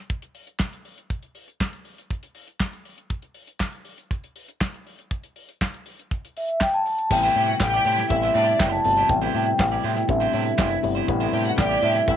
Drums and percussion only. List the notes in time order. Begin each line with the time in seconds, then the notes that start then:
0.10 kick, closed hi-hat
0.22 closed hi-hat
0.35 open hi-hat
0.47 closed hi-hat
0.59 kick, snare, clap
0.73 closed hi-hat
0.85 open hi-hat
0.98 closed hi-hat
1.10 kick, closed hi-hat
1.23 closed hi-hat
1.35 open hi-hat
1.48 closed hi-hat
1.61 kick, snare, clap
1.73 closed hi-hat
1.85 open hi-hat
1.98 closed hi-hat
2.11 kick, closed hi-hat
2.23 closed hi-hat
2.35 open hi-hat
2.48 closed hi-hat
2.60 kick, snare, clap
2.73 closed hi-hat
2.85 open hi-hat
2.98 closed hi-hat
3.10 kick, closed hi-hat
3.22 closed hi-hat
3.34 open hi-hat
3.48 closed hi-hat
3.60 kick, snare, clap
3.72 closed hi-hat
3.85 open hi-hat
3.98 closed hi-hat
4.11 kick, closed hi-hat
4.24 closed hi-hat
4.36 open hi-hat
4.48 closed hi-hat
4.61 kick, snare, clap
4.74 closed hi-hat
4.87 open hi-hat
4.99 closed hi-hat
5.11 kick, closed hi-hat
5.23 closed hi-hat
5.36 open hi-hat
5.49 closed hi-hat
5.61 kick, snare, clap
5.74 closed hi-hat
5.86 open hi-hat
5.99 closed hi-hat
6.11 kick, closed hi-hat
6.25 closed hi-hat
6.37 open hi-hat
6.49 closed hi-hat
6.61 kick, snare, clap
6.73 closed hi-hat
6.86 open hi-hat
6.98 closed hi-hat
7.11 kick, crash
7.24 closed hi-hat
7.35 open hi-hat
7.48 closed hi-hat
7.60 kick, snare, clap
7.73 closed hi-hat
7.85 open hi-hat
7.98 snare, closed hi-hat
8.10 kick, closed hi-hat
8.23 closed hi-hat
8.35 open hi-hat
8.48 closed hi-hat
8.60 kick, snare, clap
8.72 closed hi-hat
8.84 open hi-hat
8.97 closed hi-hat
9.09 kick, closed hi-hat
9.22 closed hi-hat
9.34 open hi-hat
9.47 closed hi-hat
9.59 kick, snare, clap
9.72 closed hi-hat
9.83 open hi-hat
9.96 snare, closed hi-hat
10.09 kick, closed hi-hat
10.21 closed hi-hat
10.33 open hi-hat
10.46 closed hi-hat
10.58 kick, snare, clap
10.71 closed hi-hat
10.84 open hi-hat
10.96 closed hi-hat
11.08 kick, closed hi-hat
11.21 closed hi-hat
11.33 open hi-hat
11.46 closed hi-hat
11.58 kick, snare, clap
11.70 closed hi-hat
11.82 open hi-hat
11.95 snare, closed hi-hat
12.08 kick, closed hi-hat